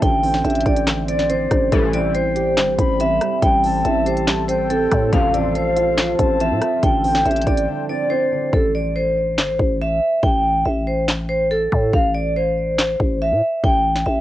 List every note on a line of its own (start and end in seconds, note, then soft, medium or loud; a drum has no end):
0.02 0.43 A1 loud
0.02 0.86 D3 medium
0.02 5.09 G3 medium
0.02 1.71 D4 medium
0.02 1.71 C5 medium
0.02 0.42 G5 medium
0.02 kick loud
0.02 closed hi-hat medium
0.23 1.07 C4 medium
0.23 1.05 G5 medium
0.23 open hi-hat medium
0.34 snare medium
0.44 0.65 A1 loud
0.44 1.51 D4 medium
0.44 0.61 E5 medium
0.44 closed hi-hat soft
0.50 closed hi-hat soft
0.55 closed hi-hat medium
0.61 closed hi-hat medium
0.66 1.48 A1 loud
0.66 1.72 D5 loud
0.66 0.83 D5 medium
0.66 kick medium
0.66 closed hi-hat soft
0.76 closed hi-hat medium
0.87 1.50 D3 medium
0.87 cross-stick medium
0.87 snare loud
0.87 clap medium
0.87 closed hi-hat medium
1.08 1.28 C4 medium
1.08 1.68 D5 medium
1.08 1.25 D5 medium
1.08 closed hi-hat medium
1.19 snare medium
1.29 1.72 C4 loud
1.29 1.70 C5 medium
1.29 closed hi-hat medium
1.51 1.71 A1 loud
1.51 1.72 D3 medium
1.51 kick medium
1.51 cross-stick medium
1.51 closed hi-hat medium
1.72 2.59 A1 loud
1.72 2.13 C2 medium
1.72 2.13 A2 medium
1.72 2.13 E3 loud
1.72 2.55 G3 medium
1.72 5.09 C4 medium
1.72 6.79 A4 loud
1.72 1.89 A4 medium
1.72 kick loud
1.72 closed hi-hat medium
1.93 2.77 C4 medium
1.93 2.11 D5 medium
1.93 2.75 G5 medium
1.93 closed hi-hat medium
2.15 3.21 E4 medium
2.15 2.96 C5 medium
2.15 closed hi-hat medium
2.36 3.42 G4 loud
2.36 closed hi-hat medium
2.57 2.69 G1 loud
2.57 3.20 G3 medium
2.57 snare loud
2.57 clap medium
2.57 closed hi-hat medium
2.68 2.78 A1 loud
2.79 3.19 A1 loud
2.79 2.98 C4 medium
2.79 3.39 B5 medium
2.79 kick loud
2.79 closed hi-hat medium
3.00 3.62 C4 medium
3.00 3.40 E5 medium
3.00 closed hi-hat medium
3.21 3.41 G3 medium
3.21 cross-stick medium
3.21 closed hi-hat medium
3.42 3.83 A1 loud
3.42 4.26 G3 medium
3.42 3.82 G5 loud
3.42 kick loud
3.42 closed hi-hat medium
3.64 4.47 C4 medium
3.64 4.45 A5 medium
3.64 open hi-hat medium
3.85 4.87 A1 loud
3.85 4.91 E4 medium
3.85 4.02 E5 medium
3.85 closed hi-hat medium
4.06 5.13 G4 loud
4.06 4.23 C5 medium
4.06 closed hi-hat medium
4.17 closed hi-hat medium
4.27 4.90 G3 medium
4.27 snare loud
4.27 clap medium
4.27 closed hi-hat medium
4.48 4.69 C4 medium
4.48 4.65 C5 medium
4.48 5.09 G5 medium
4.48 closed hi-hat medium
4.70 5.13 C4 loud
4.70 5.10 A4 medium
4.70 closed hi-hat medium
4.91 5.12 A2 loud
4.91 5.13 G3 medium
4.91 kick medium
4.91 cross-stick medium
4.91 closed hi-hat medium
5.12 6.15 A1 loud
5.12 5.53 A1 loud
5.12 5.53 F2 medium
5.12 5.53 C3 loud
5.12 6.81 F3 medium
5.12 5.96 F3 medium
5.12 6.81 F4 medium
5.12 5.30 F5 medium
5.12 kick loud
5.12 closed hi-hat medium
5.34 6.17 C4 medium
5.34 5.51 D5 medium
5.34 6.15 F5 medium
5.34 closed hi-hat medium
5.55 6.36 C5 medium
5.55 closed hi-hat medium
5.76 6.83 F4 loud
5.76 closed hi-hat medium
5.98 6.60 F3 medium
5.98 snare loud
5.98 clap medium
5.98 closed hi-hat medium
6.19 6.52 A1 loud
6.19 6.39 C4 medium
6.19 6.79 A5 medium
6.19 kick loud
6.19 closed hi-hat medium
6.40 6.83 C4 loud
6.40 6.81 E5 medium
6.40 closed hi-hat medium
6.51 6.61 A2 loud
6.62 6.83 F3 medium
6.62 cross-stick medium
6.62 closed hi-hat medium
6.83 7.24 A1 loud
6.83 7.66 D3 medium
6.83 8.51 G3 medium
6.83 8.52 D4 medium
6.83 8.52 C5 loud
6.83 7.23 G5 medium
6.83 kick loud
6.83 closed hi-hat medium
7.04 7.88 C4 medium
7.04 7.86 G5 medium
7.04 open hi-hat medium
7.15 snare medium
7.25 7.46 A1 loud
7.25 8.32 D4 medium
7.25 7.42 E5 medium
7.25 closed hi-hat soft
7.31 closed hi-hat soft
7.36 closed hi-hat medium
7.41 closed hi-hat medium
7.47 7.67 A1 loud
7.47 8.53 D5 loud
7.47 7.64 D5 medium
7.47 kick medium
7.47 closed hi-hat soft
7.57 closed hi-hat medium
7.68 8.30 D3 medium
7.89 8.09 C4 medium
7.89 8.49 D5 medium
7.89 8.06 D5 medium
8.10 8.53 C4 loud
8.10 8.50 C5 medium
8.32 8.53 D3 medium
8.53 9.40 A1 loud
8.53 8.70 A4 medium
8.53 kick loud
8.75 8.91 D5 medium
8.96 9.77 C5 medium
9.38 9.50 G1 loud
9.38 snare loud
9.38 clap medium
9.49 9.59 A1 loud
9.59 10.00 A1 loud
9.59 kick medium
9.82 10.21 E5 medium
10.23 10.64 A1 loud
10.23 10.63 G5 medium
10.23 kick loud
10.66 11.68 A1 loud
10.66 10.82 E5 medium
10.87 11.04 C5 medium
11.08 snare loud
11.08 clap medium
11.29 11.46 C5 medium
11.51 11.91 A4 medium
11.72 11.93 A2 loud
11.72 kick medium
11.93 12.96 A1 loud
11.93 12.11 F5 medium
11.93 kick loud
12.15 12.31 D5 medium
12.36 13.17 C5 medium
12.79 snare loud
12.79 clap medium
13.00 13.33 A1 loud
13.00 kick medium
13.22 13.61 E5 medium
13.32 13.42 A2 loud
13.64 14.05 A1 loud
13.64 14.04 G5 medium
13.64 kick loud
13.96 snare medium
14.06 14.21 A1 loud
14.06 14.21 E5 medium